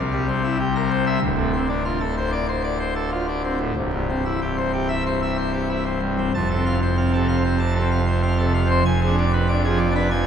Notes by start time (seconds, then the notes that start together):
Already playing: C2 C3
0.13 G3
0.28 C4
0.44 E4
0.60 G4
0.75 A#4
0.91 C5
1.07 E5
1.22 D1 D2
1.38 A2
1.53 C4
1.69 D4
1.85 F4
2.00 A4
2.18 C5
2.32 D5
2.48 C5
2.64 D5
2.80 C5
2.96 A4
3.12 F4
3.28 D4
3.44 C4
3.60 A2
3.76 C1 C2
3.93 G2
4.09 C4
4.25 E4
4.42 G4
4.57 C5
4.73 G4
4.89 E5
5.06 C5
5.22 E5
5.38 C5
5.53 G4
5.70 E4
5.85 C4
6.02 G2
6.18 C4
6.34 F1 F2 A5
6.50 A4
6.56 C4
6.66 F5
6.82 C5
6.98 C4 F5
7.13 A4
7.18 C3
7.28 F5
7.38 C4
7.44 C5
7.59 C3 A5
7.75 A4
7.81 C4
7.91 F5
8.07 C5
8.22 C4 F5
8.38 A4
8.43 C3
8.54 F5
8.65 C4
8.70 C5
8.85 F1 F2 G#5
9.01 G#4
9.07 D4
9.18 D5
9.33 B4
9.49 D4 D5
9.64 G#4
9.69 F3
9.79 D5
9.90 D4
9.95 B4
10.11 F3 G#5